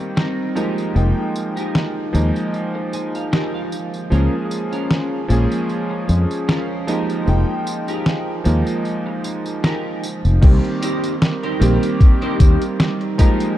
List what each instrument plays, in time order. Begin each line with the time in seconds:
Already playing: electric grand piano D#3 G3 A#3 C4 G4
0.16 clean electric guitar C4 D#4 A#4, snare, tambourine
0.55 electric grand piano F3 G#3 A#3 D#4, clean electric guitar D#4 G4 G#4 A#4, tambourine
0.78 tambourine
0.94 fretless electric bass F1, electric grand piano F3 G#3 A#3 D#4 G5, tambourine
1.35 muted clean electric guitar stroke, tambourine
1.56 clean electric guitar D#4 G4 G#4 A#4, tambourine
1.75 snare, tambourine
2.13 fretless electric bass D#2, electric grand piano F3 G#3 A#3 D#4, tambourine
2.36 tambourine
2.54 muted clean electric guitar stroke, tambourine
2.75 muted clean electric guitar stroke
2.93 clean electric guitar G#5, muted clean electric guitar stroke, tambourine
3.14 clean electric guitar F5, muted clean electric guitar stroke, tambourine
3.32 clean electric guitar D#4 G4 G#4 A#4 D#5, snare, tambourine
3.54 clean electric guitar F5
3.72 tambourine
3.94 tambourine
4.10 fretless electric bass C#2, electric grand piano F3 G#3 A#3 C#4 G#4, clean electric guitar C#4 F4 A#4, tambourine
4.51 muted clean electric guitar stroke, tambourine
4.72 clean electric guitar C#4 F4 A#4, tambourine
4.91 snare, tambourine
5.28 fretless electric bass A#1, electric grand piano F3 G#3 A#3 C#4 G#4, tambourine
5.52 tambourine
5.69 muted clean electric guitar stroke, tambourine
5.90 muted clean electric guitar stroke
6.08 fretless electric bass F2, muted clean electric guitar stroke, tambourine
6.30 muted clean electric guitar stroke, tambourine
6.48 clean electric guitar C#4 F4 A#4, snare, tambourine
6.87 electric grand piano F3 G#3 A#3 D#4, clean electric guitar D#4 G4 G#4 A#4, tambourine
7.10 tambourine
7.26 fretless electric bass F1, electric grand piano F3 G#3 A#3 D#4 G5, tambourine
7.67 muted clean electric guitar stroke, tambourine
7.88 clean electric guitar D#4 G4 G#4 A#4, tambourine
8.06 snare, tambourine
8.44 fretless electric bass D#2, electric grand piano F3 G#3 A#3 D#4, tambourine
8.67 tambourine
8.85 muted clean electric guitar stroke, tambourine
9.06 muted clean electric guitar stroke
9.24 muted clean electric guitar stroke, tambourine
9.46 muted clean electric guitar stroke, tambourine
9.64 clean electric guitar D#4 G4 G#4 A#4, snare, tambourine
10.03 tambourine
10.24 fretless electric bass F1, tambourine
10.41 fretless electric bass C2, electric grand piano D#3 G3 A#3 C4 G4, kick, closed hi-hat, crash, tambourine
10.64 closed hi-hat
10.82 clean electric guitar D#4 G4 A#4 C5, closed hi-hat, tambourine
11.04 closed hi-hat, tambourine
11.22 snare, closed hi-hat, tambourine
11.43 clean electric guitar D#4 G4 A#4 C5, closed hi-hat
11.60 fretless electric bass A#1, electric grand piano D#3 G3 A#3 C4 G4, closed hi-hat, tambourine
11.83 closed hi-hat, tambourine
12.01 kick, closed hi-hat, tambourine
12.22 clean electric guitar D#4 G4 A#4 C5, closed hi-hat
12.40 fretless electric bass D#2, kick, closed hi-hat, tambourine
12.62 closed hi-hat, tambourine
12.80 snare, closed hi-hat, tambourine
13.01 muted clean electric guitar stroke, closed hi-hat
13.18 electric grand piano F3 G#3 A#3 D#4, clean electric guitar D#4 G4 G#4 A#4, kick, closed hi-hat, tambourine
13.40 closed hi-hat, tambourine